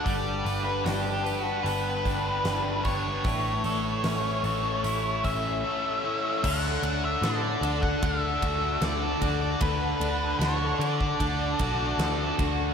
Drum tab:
CC |----------------|----------------|x---------------|----------------|
RD |----------------|----------------|--x-x-x-x-x-x-x-|x-x-x-x-x-x-x-x-|
HH |o-o-o-o-o-o-o-o-|o-o-o-o-o-o-----|----------------|----------------|
SD |----o-------o---|----o-----------|----o-------o---|----o-----o-o-o-|
BD |o---------o---o-|o---------o-----|o------oo-o---o-|o------oo-o---o-|